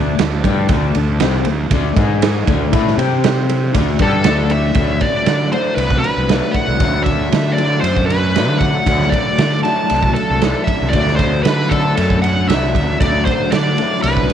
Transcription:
Already playing: D2 D3 A3 D4 F#4 D5 A5
0.19 D2 D3 A3, snare, ride
0.44 G2 G3 D4 G4, kick, ride
0.69 D2 D3 A3 D4, kick, ride
0.95 D2 D3 A3, ride
1.20 C2 C3 G3 C4, snare, ride
1.45 D2 D3 A3, ride
1.70 D2 D3 A3 D4, kick, ride
1.96 G#2 G#3 D#4 G#4 D#5 G#5, kick, ride
2.22 snare, ride
2.47 D2 D3 F#3 A3 D4 A4 F#5, kick, ride
2.72 A2 A3 E4 A4, kick, ride
2.87 snare
2.98 C3 G3 C4 G4 C5, ride
3.02 G5
3.24 snare, ride
3.49 ride
3.73 D2 D3 F#3 A3 D4 A4 F#5, kick, ride
3.99 G2 G3 D4 G4 A4, kick, ride
4.24 D2 D3 A3 D4, snare, ride
4.50 E5, ride
4.74 D2 D3 F#3 A3 D4 A4 F#5, kick, ride
4.79 D4
5.01 D5, kick, ride
5.26 D3, snare, ride
5.52 D3 F#3 A3 D4 C5, ride
5.75 C2 B4, ride
5.91 kick
5.99 B4
6.04 ride
6.17 C2
6.29 D3 F#3 A3 D4, snare, ride
6.51 F#5, kick, ride
6.68 C2
6.80 D2 D3 F#3 A3 D4, kick, ride
7.04 E5, kick, ride
7.32 D3, snare, ride
7.52 D5
7.57 D3 F#3 A3 D4, ride
7.81 F#2 C5, ride
7.97 kick
8.06 B4
8.10 ride
8.36 D3 F#3 A3 D4, snare, ride
8.48 D3
8.59 F#5, kick, ride
8.86 D2 D3 F#3 A3 D4, kick, ride
9.01 snare
9.10 D5, kick, ride
9.38 D3, snare, ride
9.63 D3 F#3 A3 D4 A5, snare, ride
9.90 C2, ride
10.03 kick
10.14 A4, ride
10.30 C2
10.42 D3 F#3 A3 D4, snare, ride
10.64 E5, kick, ride
10.81 C2
10.90 D2 D5, kick, ride
10.94 D3 F#3 A3 D4
11.08 snare
11.16 C5, kick, ride
11.43 D3 B4, snare, ride
11.69 D3 A3 D4 A4, kick, ride
11.73 F#3
11.97 F#2, ride
12.10 kick
12.22 F#5, ride
12.48 C2 D3 F#3 A3 D4 E5, snare, ride
12.75 D2, kick, ride
13.00 D2 D3 F#3 A3 D4 D5, kick, ride
13.25 C5, kick, ride
13.52 D3 D5, snare, ride
13.78 D3 F#3 A3 D4, ride
14.02 C2 B4, ride
14.17 kick
14.30 ride

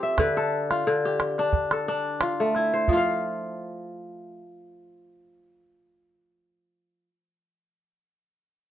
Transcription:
Already playing: F3 C4 G4 A4 C5
0.03 E5
0.18 D3 B4, calabash thump, calabash click
0.37 A4, calabash click
0.71 F4, calabash click
0.87 D3
1.05 G4
1.20 calabash click
1.38 D4, calabash click
1.53 calabash thump
1.71 A4, calabash click
1.88 D4
2.21 F4, calabash click
2.40 A3
2.55 E4, calabash click
2.74 C5
2.88 F3, calabash thump
2.93 F4
2.97 F5

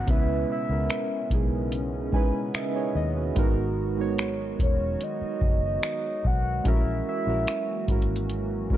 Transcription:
Already playing: C#3 B3 F#5, downlifter
0.06 C#2 B2 G#3 B3 C#4 E4 B4, kick, closed hi-hat
0.10 E5
0.52 E5
0.68 C#2 G#3 B3 C#4 E4
0.72 A#4
0.90 finger snap, closed hi-hat
1.30 B1 G#3 C#4 D#4 E4 G#4, kick, closed hi-hat
1.72 closed hi-hat
2.12 G#3 C#4 D#4 E4 B4 G#5, kick
2.54 A#4 D#5 E5, finger snap, closed hi-hat
2.76 G#4 C#5
2.95 D#2 D#5
3.17 F#4 B4
3.35 G#1 D#3 F#3 G#3 B3 D#4 F#4 A#4, kick, closed hi-hat
3.97 G#3 B3 D#4 F#4
4.01 C#5
4.18 finger snap, closed hi-hat
4.59 E1 C#5, kick, closed hi-hat
5.01 D#5, closed hi-hat
5.21 muted fingered electric bass stroke
5.41 F#1, kick
5.65 D#5
5.83 finger snap, closed hi-hat
6.25 B1 F#5, kick
6.64 A#1 E3 G#3 A#3 C#4 E4 F#4 A#4, kick, closed hi-hat
6.69 E5
7.09 E5
7.25 A#1 G#3 C#4 E4 F#4
7.30 A#4
7.47 finger snap, closed hi-hat
7.87 G#1 G#3 C#4 E4 F#4, kick, closed hi-hat
7.91 A#4
8.02 closed hi-hat
8.16 closed hi-hat
8.30 closed hi-hat
8.70 G#3 C#4 E4 F#4 A#4, kick

